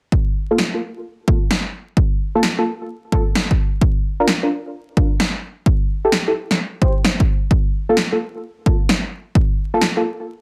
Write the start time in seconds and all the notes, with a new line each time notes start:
0.12 kick
0.51 A#3 F4 A4
0.58 snare
0.74 A#3 F4 A4
1.28 A#3 F4 A4, kick
1.51 snare
1.97 kick
2.35 A#3 F4 A4
2.43 snare
2.58 A#3 F4 A4
3.12 A#3 F4 A4, kick
3.35 snare
3.51 kick
3.81 kick
4.20 D4 F4 A#4
4.28 snare
4.43 D4 F4 A#4
4.97 D4 F4 A#4, kick
5.20 snare
5.66 kick
6.05 E4 G4 A4
6.12 snare
6.28 E4 G4 A4
6.51 snare
6.82 E4 G4 C5, kick
7.05 snare
7.20 kick
7.51 kick
7.89 A#3 F4 A4
7.97 snare
8.12 A#3 F4 A4
8.66 A#3 F4 A4, kick
8.89 snare
9.35 kick
9.74 A#3 F4 A4
9.81 snare
9.97 A#3 F4 A4